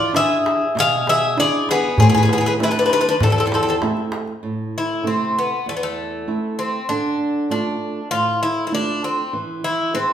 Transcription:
0.00 0.12 E3 medium
0.00 0.13 F4 medium
0.00 0.13 D5 loud
0.13 0.63 D4 soft
0.13 0.63 E4 medium
0.13 0.64 G#4 medium
0.13 0.72 G#4 medium
0.13 0.79 E5 medium
0.13 darbuka tek medium
0.46 darbuka tek medium
0.62 darbuka tek soft
0.75 1.35 B2 medium
0.75 1.06 G#4 medium
0.75 darbuka tek medium
0.80 1.09 F5 loud
1.07 1.37 G#4 medium
1.07 1.37 E5 medium
1.07 darbuka tek medium
1.37 1.86 D4 soft
1.37 1.86 E4 soft
1.37 1.86 G#4 medium
1.37 1.67 G#4 medium
1.37 1.67 D5 medium
1.37 darbuka tek medium
1.69 1.98 B3 medium
1.69 1.98 G#4 medium
1.69 darbuka tek medium
1.83 darbuka tek soft
1.98 2.58 A2 medium
1.98 2.07 G#4 medium
1.98 darbuka dum medium
2.02 2.08 C4 medium
2.09 2.15 B3 medium
2.09 2.13 G#4 medium
2.14 2.23 B3 medium
2.14 2.22 G#4 medium
2.14 darbuka tek soft
2.23 2.30 B3 soft
2.23 2.30 G#4 medium
2.29 2.37 G#4 medium
2.29 darbuka tek medium
2.33 2.38 B3 medium
2.38 2.46 B3 medium
2.38 2.45 G#4 medium
2.45 2.53 B3 medium
2.45 2.53 G#4 medium
2.45 darbuka tek soft
2.59 3.09 A3 soft
2.59 3.09 C4 soft
2.59 3.09 E4 medium
2.59 darbuka tek medium
2.63 2.69 E4 medium
2.63 2.69 B4 medium
2.71 2.76 D4 medium
2.71 2.77 B4 medium
2.75 2.84 D4 medium
2.75 2.85 B4 medium
2.75 darbuka tek soft
2.85 2.91 D4 soft
2.85 2.92 B4 medium
2.90 2.99 B4 medium
2.90 darbuka tek medium
2.94 2.99 D4 medium
3.01 3.06 D4 medium
3.01 3.07 B4 medium
3.09 3.14 D4 medium
3.09 3.15 B4 medium
3.20 3.81 E2 medium
3.20 3.29 C4 medium
3.20 3.29 A4 medium
3.20 darbuka tek medium
3.20 darbuka dum medium
3.30 3.37 C4 soft
3.30 3.38 A4 medium
3.38 3.45 C4 medium
3.38 3.45 A4 medium
3.46 3.52 C4 soft
3.46 3.53 A4 medium
3.52 3.60 C4 medium
3.52 3.60 A4 medium
3.52 darbuka tek medium
3.63 3.67 C4 soft
3.63 3.68 A4 medium
3.67 3.75 C4 medium
3.67 3.76 A4 medium
3.67 darbuka tek soft
3.81 4.31 A3 soft
3.81 4.31 C4 soft
3.81 4.32 E4 soft
3.81 darbuka tek medium
3.97 darbuka tek soft
4.12 darbuka tek medium
4.27 darbuka tek soft
4.43 5.03 A2 medium
4.78 5.05 E4 medium
5.04 5.53 C3 soft
5.04 5.53 A3 soft
5.04 5.35 C4 medium
5.04 5.54 E4 soft
5.38 5.69 B3 medium
5.66 6.26 E2 medium
5.66 5.75 A3 medium
5.76 5.82 B3 medium
5.83 6.62 A3 medium
6.27 6.77 A3 soft
6.27 6.77 C4 soft
6.27 6.77 E4 soft
6.59 6.87 C4 medium
6.89 7.49 D3 medium
6.89 7.46 D4 medium
7.50 7.99 A3 soft
7.50 7.99 D4 soft
7.50 8.08 D4 medium
7.50 8.00 F4 medium
8.11 8.70 A2 medium
8.11 8.42 F4 loud
8.43 8.64 E4 medium
8.67 8.73 E4 medium
8.71 9.20 A3 soft
8.71 9.21 D4 soft
8.71 9.02 D4 medium
8.71 9.21 F4 soft
9.04 9.32 C4 medium
9.33 9.92 E3 medium
9.64 9.92 E4 medium
9.94 10.13 C4 medium
9.94 10.13 E4 soft
9.94 10.13 G#4 medium
9.94 10.13 B4 soft

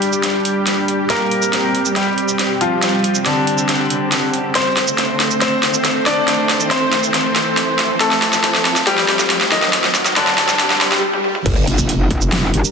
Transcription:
0.00 1.01 G3 medium
0.00 4.51 G3 medium
0.00 1.06 D4 medium
0.00 1.01 G4 medium
0.00 4.51 G4 medium
0.00 closed hi-hat medium
0.00 riser medium
0.13 shaker medium
0.23 snare medium
0.23 closed hi-hat medium
0.45 closed hi-hat medium
0.67 snare medium
0.67 closed hi-hat medium
0.88 closed hi-hat medium
1.10 1.88 A#3 medium
1.10 4.52 C4 medium
1.10 1.88 A#4 medium
1.10 snare medium
1.10 closed hi-hat medium
1.31 closed hi-hat medium
1.42 shaker medium
1.53 snare medium
1.53 closed hi-hat medium
1.75 closed hi-hat medium
1.85 shaker soft
1.96 2.52 G3 medium
1.96 2.52 G4 medium
1.96 snare medium
1.96 closed hi-hat medium
2.18 closed hi-hat medium
2.29 shaker medium
2.39 snare medium
2.39 closed hi-hat medium
2.61 3.17 F3 medium
2.61 3.17 F4 medium
2.61 closed hi-hat medium
2.82 snare medium
2.82 closed hi-hat medium
3.04 closed hi-hat soft
3.15 shaker medium
3.26 4.47 D3 medium
3.26 4.47 D4 medium
3.26 snare medium
3.26 closed hi-hat medium
3.47 closed hi-hat soft
3.58 shaker soft
3.69 snare medium
3.69 closed hi-hat medium
3.90 closed hi-hat medium
4.12 snare medium
4.12 closed hi-hat medium
4.34 closed hi-hat medium
4.55 10.99 A3 medium
4.55 5.33 C4 medium
4.55 10.99 C4 medium
4.55 5.33 C5 loud
4.55 10.99 C5 medium
4.55 snare medium
4.55 closed hi-hat medium
4.77 snare medium
4.77 closed hi-hat soft
4.88 shaker medium
4.98 snare medium
4.98 closed hi-hat medium
5.20 snare medium
5.20 closed hi-hat soft
5.31 shaker soft
5.41 5.98 C4 medium
5.41 5.98 C5 loud
5.41 snare medium
5.41 closed hi-hat medium
5.63 snare medium
5.63 closed hi-hat medium
5.74 shaker medium
5.85 snare medium
5.85 closed hi-hat medium
6.06 6.62 D4 medium
6.06 6.62 D5 medium
6.06 snare medium
6.06 closed hi-hat soft
6.28 snare medium
6.28 closed hi-hat medium
6.49 snare medium
6.49 closed hi-hat soft
6.60 shaker medium
6.71 7.92 C4 medium
6.71 7.92 C5 medium
6.71 snare medium
6.71 closed hi-hat medium
6.93 snare medium
6.93 closed hi-hat soft
7.03 shaker medium
7.14 snare medium
7.14 closed hi-hat medium
7.36 snare medium
7.36 closed hi-hat medium
7.57 snare medium
7.57 closed hi-hat medium
7.79 snare medium
7.79 closed hi-hat soft
8.00 8.78 A3 medium
8.00 8.78 A4 loud
8.00 snare medium
8.00 closed hi-hat medium
8.11 snare medium
8.22 snare medium
8.22 closed hi-hat soft
8.33 snare medium
8.33 shaker medium
8.44 snare medium
8.44 closed hi-hat medium
8.55 snare medium
8.65 snare medium
8.65 closed hi-hat medium
8.76 snare medium
8.76 shaker medium
8.87 9.43 G3 medium
8.87 9.43 G4 loud
8.87 snare medium
8.87 closed hi-hat medium
8.98 snare medium
9.08 snare loud
9.08 closed hi-hat medium
9.19 snare medium
9.19 shaker medium
9.30 snare loud
9.30 closed hi-hat medium
9.41 snare medium
9.51 10.08 D#3 medium
9.51 10.08 D#4 medium
9.51 snare loud
9.51 closed hi-hat medium
9.62 snare medium
9.73 snare loud
9.73 closed hi-hat medium
9.84 snare medium
9.95 snare loud
9.95 closed hi-hat medium
9.95 shaker medium
10.06 snare medium
10.06 shaker medium
10.16 11.03 D3 medium
10.16 11.03 D4 medium
10.16 snare loud
10.16 closed hi-hat medium
10.27 snare medium
10.38 snare loud
10.38 closed hi-hat medium
10.49 snare medium
10.49 shaker medium
10.59 snare loud
10.59 closed hi-hat medium
10.59 swell medium
10.70 snare medium
10.81 snare loud
10.81 closed hi-hat medium
10.92 snare loud
11.13 high tom medium
11.24 mid tom medium
11.35 mid tom medium
11.46 11.66 G1 loud
11.46 12.71 G3 medium
11.46 12.71 D4 medium
11.46 12.71 A#4 medium
11.46 kick loud
11.46 closed hi-hat medium
11.46 crash loud
11.46 impact medium
11.67 12.52 F1 loud
11.67 closed hi-hat medium
11.78 kick medium
11.78 shaker medium
11.89 closed hi-hat medium
12.11 kick loud
12.11 closed hi-hat medium
12.21 shaker medium
12.32 snare loud
12.32 closed hi-hat medium
12.54 12.63 G1 medium
12.54 closed hi-hat medium
12.65 shaker medium

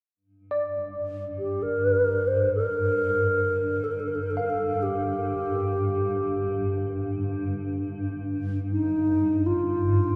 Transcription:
0.16 10.16 G2 medium
0.51 7.74 D5 soft
1.39 1.64 G4 medium
1.62 2.29 A#4 medium
2.27 2.54 C5 medium
2.55 3.85 A#4 medium
3.84 3.93 A4 medium
3.91 4.01 A#4 medium
4.00 4.09 A4 medium
4.08 4.17 A#4 medium
4.15 4.24 A4 medium
4.23 4.32 A#4 medium
4.31 4.40 A4 medium
4.37 4.51 A#4 medium
4.37 10.16 F5 soft
4.50 4.84 A4 medium
4.83 6.93 G4 medium
8.72 9.48 D#4 medium
9.46 10.16 F4 medium

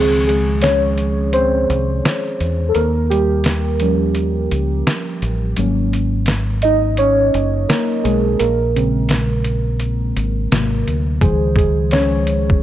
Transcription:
0.00 1.65 C#2 loud
0.00 0.43 D#3 medium
0.00 0.43 F3 medium
0.00 0.26 G#3 medium
0.00 0.43 C4 medium
0.00 0.25 G#4 medium
0.27 0.44 G#3 medium
0.27 0.41 G#4 medium
0.27 closed hi-hat medium
0.62 1.30 C#4 medium
0.62 1.35 C#5 loud
0.62 snare loud
0.62 closed hi-hat medium
0.62 tambourine medium
0.98 closed hi-hat medium
1.33 2.66 C4 medium
1.33 2.73 C5 loud
1.33 closed hi-hat medium
1.70 2.00 C2 medium
1.70 closed hi-hat medium
2.05 snare loud
2.05 closed hi-hat medium
2.05 tambourine medium
2.40 2.71 E2 medium
2.40 closed hi-hat medium
2.69 2.74 A4 medium
2.75 4.47 D#2 loud
2.75 3.08 A#3 medium
2.75 3.07 A#4 loud
2.75 closed hi-hat medium
3.10 3.80 G3 medium
3.10 4.47 G4 medium
3.10 closed hi-hat medium
3.44 snare loud
3.44 closed hi-hat medium
3.44 tambourine medium
3.80 4.82 F3 medium
3.80 4.83 G3 medium
3.80 4.83 C#4 medium
3.80 closed hi-hat medium
4.15 closed hi-hat medium
4.52 4.82 C#2 medium
4.52 closed hi-hat medium
4.87 snare loud
4.87 closed hi-hat medium
4.87 tambourine medium
5.22 5.53 A1 medium
5.22 closed hi-hat medium
5.57 7.30 G#1 loud
5.57 6.07 F#3 medium
5.57 6.08 A#3 medium
5.57 6.08 C#4 medium
5.57 closed hi-hat medium
5.94 closed hi-hat medium
6.26 snare medium
6.26 closed hi-hat medium
6.26 tambourine medium
6.62 6.97 D#4 medium
6.62 6.99 D#5 loud
6.62 closed hi-hat medium
6.97 7.66 C#4 medium
6.97 7.71 C#5 loud
6.97 closed hi-hat medium
7.34 7.65 F#1 medium
7.34 closed hi-hat medium
7.69 8.02 A#3 medium
7.69 8.05 A#4 medium
7.69 snare loud
7.69 closed hi-hat medium
7.69 tambourine medium
8.04 8.35 B1 medium
8.04 8.20 G#3 medium
8.04 8.18 G#4 medium
8.04 closed hi-hat medium
8.39 10.12 A#1 loud
8.39 10.52 A#3 medium
8.39 10.82 A#4 medium
8.39 closed hi-hat loud
8.75 9.25 C#3 medium
8.75 9.25 G#3 medium
8.75 9.25 C4 medium
8.75 closed hi-hat medium
9.09 snare medium
9.09 closed hi-hat medium
9.09 tambourine medium
9.45 closed hi-hat medium
9.80 closed hi-hat medium
10.17 10.47 G#1 medium
10.17 closed hi-hat medium
10.51 10.82 G#1 loud
10.51 11.01 C3 medium
10.51 11.02 F#3 medium
10.51 11.02 A#3 medium
10.51 snare loud
10.51 closed hi-hat medium
10.51 tambourine medium
10.87 11.18 D2 medium
10.87 closed hi-hat medium
11.21 12.63 C#2 medium
11.21 12.24 D#3 medium
11.21 12.24 F3 medium
11.21 11.55 G#3 medium
11.21 11.54 G#4 loud
11.21 12.24 C5 medium
11.21 kick loud
11.21 closed hi-hat loud
11.56 11.73 G#3 medium
11.56 11.71 G#4 medium
11.56 kick medium
11.56 closed hi-hat medium
11.91 12.60 C#4 medium
11.91 12.63 C#5 loud
11.91 snare medium
11.91 closed hi-hat medium
11.91 tambourine medium
12.27 closed hi-hat medium
12.50 kick medium

